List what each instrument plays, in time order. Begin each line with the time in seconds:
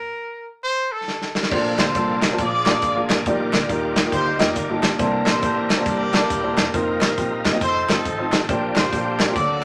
Already playing: trumpet A#4
0.63 trumpet C5
0.92 trumpet A4
1.08 snare
1.22 snare
1.35 snare
1.43 snare
1.51 fingered electric bass A#1, grand piano A#2 A#3 D4 F4 A4 C5, tonewheel organ F3 A#3 C4 D4 A4, kick, crash
1.78 fingered electric bass D2, horn section F4 A4 C5, snare, clap, closed hi-hat
1.95 fingered electric bass C2, grand piano A#3 D4 F4 A4 C5, kick, closed hi-hat
2.22 horn section A#4, snare, clap, closed hi-hat
2.31 grand piano A#3 D4 F4 A4 C5
2.38 fingered electric bass A#1, grand piano A#2, tonewheel organ F3 G#3 A#3 D4 G4, horn section F4 G#4 D5, kick, closed hi-hat
2.45 tonewheel organ G#4
2.65 grand piano A#3 D4 F4 G#4 D5, snare, clap, closed hi-hat
2.82 fingered electric bass G#1, kick, closed hi-hat
2.95 grand piano A#3 D4 F4 G#4 F5
3.10 fingered electric bass A1, horn section A#4, snare, clap, closed hi-hat
3.26 fingered electric bass A#1, grand piano A#2 A#3 D#4 F4 G4 D5, tonewheel organ D#3 G3 A#3 F4 D5, horn section D4 G4 A#4, kick, closed hi-hat
3.53 fingered electric bass D2, snare, clap, closed hi-hat
3.69 fingered electric bass D#2, grand piano A#3 D#4 F4 G4 A#4, kick, closed hi-hat
3.96 snare, clap, closed hi-hat
4.04 grand piano A#3 D#4 F4 G4 A#4
4.12 fingered electric bass D2, horn section D#4 G4 C5, kick, closed hi-hat
4.39 fingered electric bass F1, grand piano A#3 D#4 F4 G4 D#5, horn section D4 G4 A#4, snare, clap, closed hi-hat
4.56 fingered electric bass G1, kick, closed hi-hat
4.69 grand piano A#3 D#4 F4 G4 A4
4.83 snare, clap, closed hi-hat
4.98 fingered electric bass C2, grand piano C3 A#3 D4 E4 A4 C5, tonewheel organ E3 A#3 C4 D4 G#4, kick, closed hi-hat
5.05 tonewheel organ A#4
5.26 fingered electric bass A#1, horn section E4 G4 C5, snare, clap, closed hi-hat
5.41 fingered electric bass A1, grand piano A#3 D4 E4 A4 C5, kick, closed hi-hat
5.70 horn section A#4, snare, clap, closed hi-hat
5.77 grand piano A#3 D4 E4 A4 C5
5.86 fingered electric bass C2, horn section G4 A#4 D5, kick, closed hi-hat
6.12 grand piano A#3 D4 E4 A4 D5, snare, clap, closed hi-hat
6.30 fingered electric bass D#1, kick, closed hi-hat
6.43 grand piano A#3 D4 E4 A4 C5
6.57 fingered electric bass E1, horn section A#4, snare, clap, closed hi-hat
6.73 fingered electric bass F1, tonewheel organ F3 A#3 C4 D#4 A4, grand piano A#3 C4 D#4 F4 C5, horn section D#4 A#4, kick, closed hi-hat
6.79 tonewheel organ A#4
7.01 fingered electric bass A1, snare, clap, closed hi-hat
7.17 fingered electric bass A#1, grand piano A#3 C4 D#4 F4 G4, kick, closed hi-hat
7.45 kick, snare, clap, closed hi-hat
7.52 grand piano A#3 C4 D#4 F4 D#5
7.61 fingered electric bass F1, tonewheel organ F3 A3 C4 D#4 A4, horn section D#4 A4 C5, kick, closed hi-hat
7.88 fingered electric bass G1, grand piano A3 C4 D#4 F4 C5, horn section C4 A4, snare, clap, closed hi-hat
7.92 horn section D#4
8.05 fingered electric bass G#1, kick, closed hi-hat
8.18 grand piano A3 C4 D#4 F4 C5
8.32 fingered electric bass A1, snare, clap, closed hi-hat
8.48 fingered electric bass A#1, grand piano A#2 A#3 D4 F4 G4 C5, tonewheel organ F3 A#3 C4 D4 G4, kick, closed hi-hat
8.76 fingered electric bass G1, horn section F4 G4 C5, snare, clap, closed hi-hat
8.92 fingered electric bass A#1, grand piano A#3 D4 F4 G4 A4, kick, closed hi-hat
9.19 horn section A#4, snare, clap, closed hi-hat
9.28 grand piano A#3 D4 F4 G4 C5
9.35 fingered electric bass D2, grand piano D3, tonewheel organ F#3 A#3 C4 D4 A4, horn section F#4 A4 D5, kick, closed hi-hat